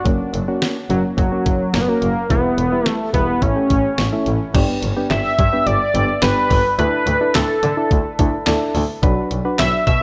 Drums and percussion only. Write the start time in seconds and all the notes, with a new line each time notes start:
0.06 kick, closed hi-hat
0.34 closed hi-hat
0.62 snare, closed hi-hat
0.90 closed hi-hat
1.18 kick, closed hi-hat
1.46 kick, closed hi-hat
1.74 snare, closed hi-hat
2.02 closed hi-hat
2.30 kick, closed hi-hat
2.58 closed hi-hat
2.86 snare, closed hi-hat
3.14 kick, closed hi-hat
3.42 kick, closed hi-hat
3.70 kick, closed hi-hat
3.98 snare, closed hi-hat
4.26 closed hi-hat
4.54 kick, closed hi-hat, crash
4.82 closed hi-hat
5.10 snare, clap, closed hi-hat
5.38 kick, closed hi-hat
5.66 closed hi-hat
5.94 closed hi-hat
6.22 snare, clap, closed hi-hat
6.50 kick, open hi-hat
6.79 closed hi-hat
7.07 closed hi-hat
7.35 snare, clap, closed hi-hat
7.63 closed hi-hat
7.91 kick, closed hi-hat
8.19 kick, closed hi-hat
8.47 snare, clap, closed hi-hat
8.75 open hi-hat
9.03 kick, closed hi-hat
9.31 closed hi-hat
9.59 snare, clap, closed hi-hat
9.87 kick, closed hi-hat